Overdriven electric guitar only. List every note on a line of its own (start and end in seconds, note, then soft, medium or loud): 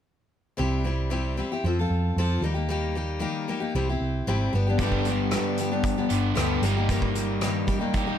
4.78 6.09 G2 medium
4.78 6.09 D3 medium
4.78 6.11 G3 medium
4.78 6.10 B3 medium
4.78 6.09 D4 medium
4.78 6.09 G4 medium
6.10 6.34 G2 medium
6.10 6.35 D3 medium
6.10 6.36 G3 medium
6.10 6.36 B3 medium
6.10 6.35 D4 medium
6.10 6.38 G4 medium
6.35 6.61 G2 medium
6.35 6.62 D3 medium
6.35 6.61 G3 medium
6.35 6.62 B3 medium
6.35 6.62 D4 medium
6.35 6.63 G4 medium
6.62 7.92 G3 medium
6.62 7.94 A#3 medium
6.62 7.94 D#4 medium
6.62 7.95 G4 medium
7.94 8.18 G3 medium
7.94 8.18 A#3 medium
7.94 8.18 D#4 medium
7.94 8.18 G4 medium